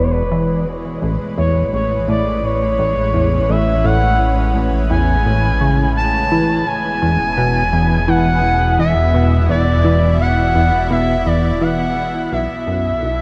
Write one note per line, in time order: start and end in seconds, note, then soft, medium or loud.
0.00 0.99 E1 medium
0.00 0.22 E2 medium
0.00 1.02 B2 medium
0.00 12.32 E3 medium
0.00 12.32 G#3 medium
0.00 1.94 E4 medium
0.00 12.32 B4 medium
0.00 0.12 C#5 medium
0.11 0.67 B4 medium
0.32 0.65 E3 medium
1.02 1.18 A1 medium
1.02 6.63 A1 medium
1.02 6.67 A2 medium
1.38 1.63 E2 medium
1.38 1.71 C#5 medium
1.73 1.99 A1 medium
1.73 2.06 C#5 medium
2.08 2.42 A2 medium
2.08 2.46 D5 medium
2.44 3.52 C#5 loud
2.78 2.94 A1 medium
2.78 8.93 C#4 medium
3.14 3.40 E2 medium
3.49 3.75 A1 medium
3.49 3.87 E5 loud
3.84 4.18 A2 medium
3.84 4.56 F#5 loud
4.55 4.71 A1 medium
4.90 5.16 E2 medium
4.90 5.92 G#5 loud
5.25 5.51 A1 medium
5.61 5.87 C#3 medium
5.96 6.69 A5 loud
6.32 6.65 E3 medium
6.67 12.28 E1 medium
6.67 13.22 B2 medium
6.67 8.10 G#5 loud
7.02 7.18 E2 medium
7.15 13.22 E4 medium
7.37 7.63 B2 medium
7.73 7.99 E2 medium
8.08 8.42 E3 medium
8.08 8.79 F#5 loud
8.79 8.94 E2 medium
8.79 9.45 E5 loud
9.14 9.40 B2 medium
9.49 9.75 E2 medium
9.49 10.16 D5 loud
9.84 10.18 E3 medium
10.20 10.87 F#5 loud
10.55 10.71 E2 medium
10.90 11.16 B2 medium
10.90 11.28 E5 loud
11.26 11.52 E2 medium
11.26 11.63 D5 medium
11.61 11.95 E3 medium
11.61 12.32 F#5 loud
12.32 13.22 B1 medium
12.32 12.47 B1 medium
12.32 13.22 E5 loud
12.67 12.93 F#2 medium
12.67 13.22 A4 medium
12.74 13.22 F#3 medium
13.02 13.22 B1 medium